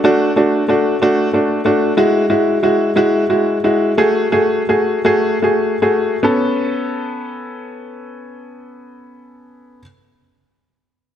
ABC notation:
X:1
M:6/8
L:1/8
Q:3/8=54
K:A
V:1 name="Upright piano"
[A,DF] [A,DF] [A,DF] [A,DF] [A,DF] [A,DF] | [G,EF] [G,EF] [G,EF] [G,EF] [G,EF] [G,EF] | [A,FG] [A,FG] [A,FG] [A,FG] [A,FG] [A,FG] | [B,CA]6- |
[B,CA]6 |]